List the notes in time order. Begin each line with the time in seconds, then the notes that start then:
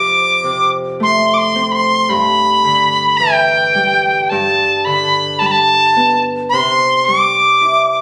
Already playing: F2 G4 D6
0.44 C3
1.00 A3 C6
1.34 C6 D6
1.55 C4
1.72 B5 C6
2.09 G2 B5
2.64 D3
3.17 E3 G5
3.75 G3
4.30 G2 A5
4.85 D3 B5
5.39 G3 A5
5.46 B5
5.51 A5
5.96 B3
6.49 C3 C6
7.05 G3 D6
7.61 E4